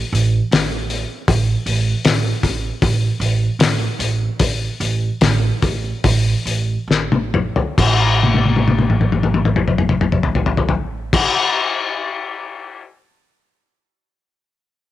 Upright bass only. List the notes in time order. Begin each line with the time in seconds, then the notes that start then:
0.13 A1
0.51 A1
1.28 A1
1.66 A1
2.05 A1
2.43 A1
2.82 A1
3.20 A1
3.59 A1
3.99 A1
4.40 A1
4.80 A1
5.21 A1
5.62 A1
6.04 A1
6.45 A1
6.88 A1
7.78 A1